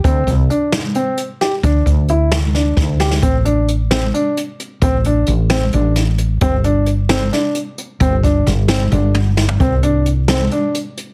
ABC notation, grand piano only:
X:1
M:7/8
L:1/8
Q:1/4=132
K:Am
V:1 name="Grand piano"
C2 D2 C2 G | D2 E2 D2 G | C D2 C D2 z | C D2 C D2 z |
C D2 C D2 z | C D2 C D2 z | C D2 C D2 z |]